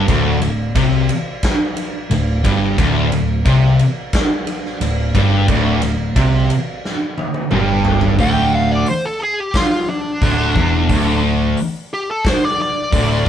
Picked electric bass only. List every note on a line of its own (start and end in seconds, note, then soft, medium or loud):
0.08 0.40 D1 loud
0.42 0.74 D1 medium
0.75 1.07 C2 medium
2.12 2.43 D1 medium
2.45 2.76 G1 loud
2.78 3.10 D1 loud
3.13 3.44 D1 medium
3.46 3.77 C2 loud
4.81 5.13 D1 medium
5.15 5.46 G1 medium
5.49 5.80 D1 loud
5.83 6.14 D1 medium
6.16 6.48 C2 medium
7.52 8.15 G1 loud
8.19 8.82 D1 loud
10.22 10.54 D1 loud
10.56 10.87 E1 medium
10.89 11.53 D1 loud
12.93 13.24 D1 loud